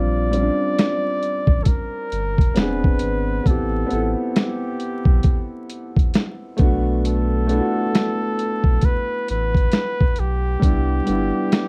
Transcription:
Already playing: A#1 G3 C4 D4 F4 D5
0.31 G3 C4, closed hi-hat
0.36 C#4 F4
0.42 D4
0.79 snare, closed hi-hat
1.23 closed hi-hat
1.47 A1, kick
1.63 A4, kick, closed hi-hat
1.68 A#4
2.12 G1, closed hi-hat
2.38 kick, closed hi-hat
2.54 E1 B3 C4 B4, snare, closed hi-hat
2.58 D4 G#4
2.84 kick
2.99 G#1, closed hi-hat
3.44 A1 B3 C4 A4, kick, closed hi-hat
3.48 E4 G4
3.86 B3 C4
3.90 A1 E4 A4, closed hi-hat
4.36 G4, snare, closed hi-hat
4.80 closed hi-hat
5.05 B1, kick
5.23 kick, closed hi-hat
5.70 closed hi-hat
5.96 kick, closed hi-hat
6.14 snare, closed hi-hat
6.57 B1 A3 B3, kick, closed hi-hat
6.61 D4 F#4
7.05 A4, closed hi-hat
7.47 A3 B3, closed hi-hat
7.51 D4 E4
7.60 F#4
7.95 snare, closed hi-hat
8.39 closed hi-hat
8.64 B1, kick
8.81 B4, kick, closed hi-hat
9.28 A1 B4, closed hi-hat
9.55 kick, closed hi-hat
9.72 snare, closed hi-hat
10.01 kick
10.16 B1 G4, closed hi-hat
10.59 C2 G3 B3, kick, closed hi-hat
10.64 D4 E4
11.06 G1 G3 B3 D4, closed hi-hat
11.12 E4
11.52 snare, closed hi-hat

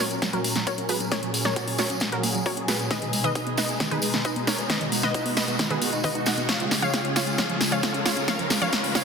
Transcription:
Already playing: riser
0.00 A#2 F#3 C#4 A#4 C#5
0.11 C#4, closed hi-hat, tambourine
0.22 A#2 F#3 C#4 A#4, kick, snare, closed hi-hat, tambourine
0.33 F#3 F#4 A#4, closed hi-hat
0.44 A#2 F#3 A#3 C#4 A#4, open hi-hat, tambourine
0.56 F#3, snare, closed hi-hat, tambourine
0.67 A#2 F#3 C#4 F#4 A#4 C#5, kick, closed hi-hat, tambourine
0.78 C#4, closed hi-hat
0.89 A#2 F#3 C#4 F#4 G#4 A#4 B4, open hi-hat, tambourine
1.00 C#4, closed hi-hat, tambourine
1.12 A#2 F#3 C#4 G#4 A#4 C#5, kick, snare, closed hi-hat, tambourine
1.23 F#3, closed hi-hat
1.34 A#2 F#3 A#3 C#4 G#4, open hi-hat, tambourine
1.45 F#3 A#4 C#5, snare, closed hi-hat
1.56 A#2 F#3 C#4 F#4 G#4, kick, closed hi-hat, tambourine
1.67 C#4, open hi-hat
1.78 A#2 F#3 C#4 F#4 G#4 A#4 C#5, snare, open hi-hat, tambourine
1.90 C#4, closed hi-hat, tambourine
2.00 A#2 F#3 C#4 G#4, kick, snare, closed hi-hat, tambourine
2.12 F#3 F#4 A#4, closed hi-hat
2.23 A#2 F#3 A#3 C#4 G#4, open hi-hat, tambourine
2.34 F#3, closed hi-hat, tambourine
2.46 A#2 F#3 C#4 F#4 G#4 A#4 C#5, kick, open hi-hat, tambourine
2.57 C#4, closed hi-hat
2.68 A#2 F#3 C#4 F#4 G#4 B4, snare, open hi-hat, tambourine
2.79 C#4, closed hi-hat, tambourine
2.91 B2 D#3 G#3 D#4 G#4 B4 D#5, kick, snare, closed hi-hat, tambourine
3.02 D#3, closed hi-hat
3.13 B2 G#3 D#4 G#4, open hi-hat, tambourine
3.24 D#3 B4 D#5, closed hi-hat, tambourine
3.35 B2 G#3 D#4 G#4, kick, closed hi-hat, tambourine
3.47 B3, closed hi-hat
3.57 B2 G#3 D#4 G#4 B4 D#5, snare, open hi-hat, tambourine
3.69 B3, closed hi-hat, tambourine
3.80 B2 D#3 G#3 D#4 G#4, kick, snare, closed hi-hat, tambourine
3.91 D#3 G#4 B4, closed hi-hat
4.02 B2 G#3 D#4 G#4, open hi-hat, tambourine
4.14 D#3, snare, tambourine
4.24 B2 G#3 D#4 G#4 B4 D#5, kick, closed hi-hat, tambourine
4.36 B3, closed hi-hat
4.47 B2 G#3 D#4 G#4 A#4 C#5, snare, open hi-hat, tambourine
4.58 B3, closed hi-hat, tambourine
4.70 B2 D#3 G#3 D#4 F#4 B4 D#5, kick, snare, closed hi-hat, tambourine
4.81 D#3, closed hi-hat
4.92 B2 G#3 D#4 F#4, open hi-hat, tambourine
5.02 D#3 B4 D#5, snare, closed hi-hat, tambourine
5.14 B2 G#3 D#4 F#4, kick, closed hi-hat, tambourine
5.26 B3, open hi-hat
5.37 B2 G#3 D#4 F#4 B4 D#5, snare, open hi-hat, tambourine
5.47 B3, closed hi-hat, tambourine
5.59 B2 D#3 G#3 D#4 F#4, kick, snare, closed hi-hat, tambourine
5.70 D#3 G#4 B4, closed hi-hat
5.81 B2 G#3 B3 D#4 F#4, open hi-hat, tambourine
5.93 D#4, closed hi-hat, tambourine
6.04 B2 D#3 G#3 D#4 F#4 B4 D#5, kick, open hi-hat, tambourine
6.15 D#4, closed hi-hat
6.26 B2 G#3 D#4 F#4 D#5 F#5, snare, open hi-hat, tambourine
6.37 B3, closed hi-hat, tambourine
6.49 C#3 F3 G#3 F4 G#4 C#5 F5, kick, snare, closed hi-hat, tambourine
6.60 F3, closed hi-hat
6.71 C#3 G#3 F4 G#4, snare, open hi-hat, tambourine
6.82 F3 C#5 F5, closed hi-hat, tambourine
6.94 C#3 G#3 F4 G#4, kick, snare, closed hi-hat, tambourine
7.05 C#4, closed hi-hat
7.16 C#3 G#3 F4 G#4 C#5 F5, snare, open hi-hat, tambourine
7.27 C#4, closed hi-hat, tambourine
7.38 C#3 F3 G#3 F4 G#4 C#5 F5, kick, snare, closed hi-hat, tambourine
7.49 F3, closed hi-hat
7.61 C#3 G#3 F4 G#4, snare, open hi-hat, tambourine
7.71 F3 C#5 F5, closed hi-hat, tambourine
7.83 C#3 G#3 F4 G#4, kick, snare, closed hi-hat, tambourine
7.94 C#4, closed hi-hat
8.05 C#3 G#3 F4 G#4 C#5 F5, snare, open hi-hat, tambourine
8.16 C#4, closed hi-hat, tambourine
8.28 C#3 F3 G#3 F4 A#4 C#5 F5, kick, snare, closed hi-hat, tambourine
8.39 F3, closed hi-hat
8.50 C#3 G#3 F4 A#4, snare, open hi-hat, tambourine
8.61 F3 C#5 F5, closed hi-hat, tambourine
8.72 C#3 G#3 F4 A#4, kick, snare, closed hi-hat, tambourine
8.84 C#4, open hi-hat
8.95 C#3 G#3 F4 A#4 C#5 F5, snare, open hi-hat, tambourine

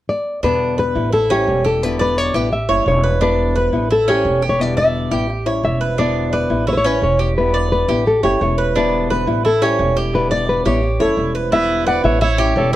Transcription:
0.09 D5
0.43 E2 B2 D3 G3 B3 D4 E4 B4
0.78 B4
0.95 A1 D3 G3 B3 E4
1.12 E4 A4, muted nylon-string guitar stroke
1.30 G3 C#4 E4 G4
1.47 E1 E3 G3 C#4 E4
1.64 G4 A4
1.82 B2 D3 G3 B3 E4 B4
1.99 B4 D5
2.18 C#5
2.34 A1 D3 G3 B3 E4 G4 B4
2.51 E5, muted nylon-string guitar stroke
2.69 F#1 G3 C#4 E4 C#5
2.86 E1 E3 G3 C#4 E4 C#5
3.03 B4
3.20 B2 D3 G3 B3 D4 E4 B4
3.56 B4
3.72 A1 D3 G3 B3 E4
3.90 E4 A4, muted nylon-string guitar stroke
4.07 G3 C#4 E4 G4
4.25 E1 E3 G3 C#4 E4
4.42 G4
4.49 C#5
4.59 B2 D3 G3 B3 E4 D5
4.77 D5 E5
5.11 A1 D3 G3 B3 E4 G4
5.29 muted nylon-string guitar stroke
5.46 G3 C#4 E4 C#5
5.63 E1 E3 G3 C#4 E4 E5
5.81 B4
5.97 B2 D3 G3 B3 D4 E4 D5
6.33 B4 D5
6.50 A1 D3 G3 B3 E4
6.67 E4 C#5, muted nylon-string guitar stroke
6.73 B4
6.78 C#5
6.84 G3 C#4 E4 B4
7.02 E1 E3 G3 C#4 E4 C#5
7.19 G4
7.37 B2 D3 G3 B3 E4 B4
7.54 D5
7.72 B4
7.88 A1 D3 G3 B3 E4 G4
8.06 A4, muted nylon-string guitar stroke
8.23 F#1 G3 C#4 E4 G4 C#5
8.40 E1 E3 G3 C#4 E4 C#5
8.58 B4
8.75 B2 D3 G3 B3 D4 E4 B4
9.10 B4
9.27 A1 D3 G3 B3 E4
9.44 E4 A4, muted nylon-string guitar stroke
9.62 G3 C#4 E4 G4
9.79 E1 E3 G3 C#4 E4
9.97 G4
10.13 B2 D3 G3 B3 E4 B4
10.31 D5
10.49 B4
10.65 A1 D3 G3 B3 E4 G4 C#5
10.82 muted nylon-string guitar stroke
11.00 F#1 G3 C#4 E4 A4 C#5
11.17 E1 E3 G3 C#4 E4
11.35 B4
11.51 B2 D3 G3 B3 E4 B4 E5
11.87 B4 D5 F#5
12.04 A1 D3 G3 B3 E4 C#5 E5
12.21 E4 C#5 E5, muted nylon-string guitar stroke
12.38 G3 C#4 E4 G4
12.56 E1 E3 G3 C#4 E4 A4 C#5

